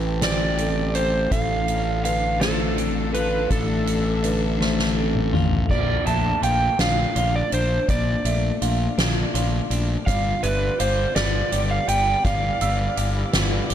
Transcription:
Already playing: A1 A2 E3 A3 C4 G4 B4 A5
0.22 G3 C5 D5, snare, closed hi-hat
0.58 C4 A4, closed hi-hat
0.95 G4 C5, closed hi-hat
1.31 A1 A2 D4 F4 A4 F5, kick, closed hi-hat
1.68 closed hi-hat
2.05 D3 B4 F5, closed hi-hat
2.41 A3 A4 C5, snare, closed hi-hat
2.78 C4 A4, closed hi-hat
3.14 F4 B4, closed hi-hat
3.50 A1 A2 A4 E5, kick, closed hi-hat
3.87 closed hi-hat
4.24 D3 B4, closed hi-hat
4.60 A3 C5, snare
4.79 snare
4.97 C4 A4
5.15 mid tom
5.33 F4, mid tom
5.52 floor tom
5.69 A#1 A#2 A3 D4 D5, kick, crash
6.05 A#1 A3 E5 A5, closed hi-hat
6.42 A#1 F4 F5 G5, closed hi-hat
6.79 A#1 D4 F5, snare, closed hi-hat
7.16 A#1 F4 D5, closed hi-hat
7.36 D5
7.52 A#1 D4 C5, closed hi-hat
7.89 A#1 A#2 D5, kick, closed hi-hat
8.25 A#1 A3 E5, closed hi-hat
8.62 A#1 F4 F5, closed hi-hat
8.98 A#1 D4, snare, closed hi-hat
9.34 A#1 F4 D5, closed hi-hat
9.70 A#1 D4, closed hi-hat
10.06 G1 G2 G3 F4 D5 F5, kick, closed hi-hat
10.43 G1 G3 B4 E5, closed hi-hat
10.79 G1 G4 C5 F5, closed hi-hat
11.15 G1 B3 D5, snare, closed hi-hat
11.52 G1 G4 D5, closed hi-hat
11.71 F5
11.88 G1 B3 G5, closed hi-hat
12.25 G1 G2 E3 D5 F5, kick, closed hi-hat
12.61 G1 G3 E6, closed hi-hat
12.97 G1 G4 F5, closed hi-hat
13.33 G1 B3, snare, closed hi-hat
13.70 G1 G4 D5, closed hi-hat

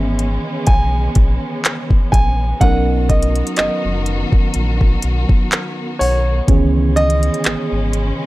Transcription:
Already playing: G#1 C#3 D#3 E3 G#3 B3 C#4 G#4 E5
0.19 closed hi-hat
0.67 B1 G#5, kick, closed hi-hat
1.15 A#1, kick, closed hi-hat
1.65 clap, closed hi-hat
1.90 kick
2.12 A#1 G#5, kick, closed hi-hat
2.60 B1 D#3 F#3 B3 C#4 D#4 F#4 A#4 D#5 F#5, kick, closed hi-hat
3.09 D#5, kick, closed hi-hat
3.23 closed hi-hat
3.36 closed hi-hat
3.47 closed hi-hat
3.56 F#1 D#5, clap, closed hi-hat
3.85 F#1
4.06 closed hi-hat
4.32 kick
4.54 A#1, closed hi-hat
4.81 kick
5.02 B1, closed hi-hat
5.29 kick
5.52 clap, closed hi-hat
5.99 B1 C#5 F#5, open hi-hat
6.47 C#2 C#3 D#3 E3 G#3 B3 C#4 G#4, kick, closed hi-hat
6.96 D#5, closed hi-hat
7.10 closed hi-hat
7.23 closed hi-hat
7.34 closed hi-hat
7.44 G#1, clap, closed hi-hat
7.72 G#1
7.93 closed hi-hat

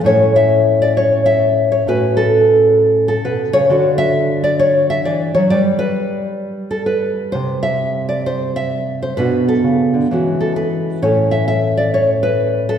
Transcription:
0.04 A2 C#4 E4 A4 C#5
0.36 E5
0.82 D5
0.97 C#5
1.26 E5
1.72 C#5
1.87 A2 C#4 F#4 B4
2.17 A4
3.08 A4
3.24 B2 B4
3.53 C#3 C#5
3.69 D3 D4 F#4 A4
3.98 E5
4.44 D5
4.59 C#5
4.90 E5
5.05 E3 D5
5.35 F#3 C#5
5.50 G3 G4 B4 D5
5.79 B4
6.71 A4
6.86 B4
7.32 C3 C5
7.63 E5
8.09 D5
8.26 C5
8.56 E5
9.02 C5
9.17 B2 B3 D4 F#4 B4
9.48 A4
9.64 C#3
9.94 D3
10.11 E3 G#3 C#4 F#4
10.41 A4
10.56 B4
11.02 A2 C#4 E4 A4 C#5
11.31 E5
11.48 E5
11.77 D5
11.94 C#5
12.23 B4
12.69 A4

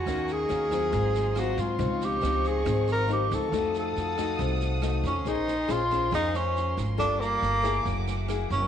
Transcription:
Already playing: F#4 G#5
0.06 D#2 D#3 A#3 C#4 F#4 A#4 D#5 C#6, kick, cross-stick, snare
0.28 snare
0.33 G#4
0.49 D#2 A#3 C#4 F#4, snare
0.71 F#3 C4 F4, kick, cross-stick, snare
0.92 G#1 G#2 F5 C6, kick, snare
1.14 snare
1.35 F#3 C4 F4, cross-stick, snare
1.40 F#4
1.57 G#2 F4, kick, snare
1.78 C#2 C#3 F3 C4 D#4 D#5 C#6, kick, snare
2.01 G4, snare
2.21 C#2 F3 C4 D#4, cross-stick, snare
2.44 G#4, kick, snare
2.65 G#1 G#2 F3 C4 D#4, kick, cross-stick, snare
2.87 snare
2.92 A#4
3.08 F3 C4 D#4, snare
3.13 G4
3.31 C#2 A4, kick, snare
3.49 F2 F3 A4 F5 F#5 D#6, kick, cross-stick, snare
3.53 A3 D#4 F#4
3.74 snare
3.79 A4
3.96 F2, snare
4.17 A3 D#4 F#4, kick, cross-stick, snare
4.39 C2 C3, kick, snare
4.61 snare
4.82 A3 D#4 F#4, cross-stick, snare
5.04 F2 C#4, kick, snare
5.24 A#1 A#3 C#4 D#4 G#4 A#4 C5 G#5 C6, kick, snare
5.48 snare
5.68 A#1 C#4 F4 G#4 C5, cross-stick, snare
5.90 C#4 G#4 C5, kick, snare
6.11 F2 F3 C#4 D#4 G#4 C5, kick, cross-stick, snare
6.34 C#4, snare
6.56 snare
6.77 G#1, kick, snare
6.98 G1 G3 A#3 D4 F4 A4 F5 G5 A5 D6, kick, cross-stick, snare
7.20 A#3, snare
7.42 G1, snare
7.62 A#3 E4 G#4, kick, cross-stick, snare
7.83 F#1 F#3 G#4 E5 F#5, kick, snare
8.07 snare
8.28 A#3 E4 G#4, cross-stick, snare
8.50 F#1 C#4, kick, snare

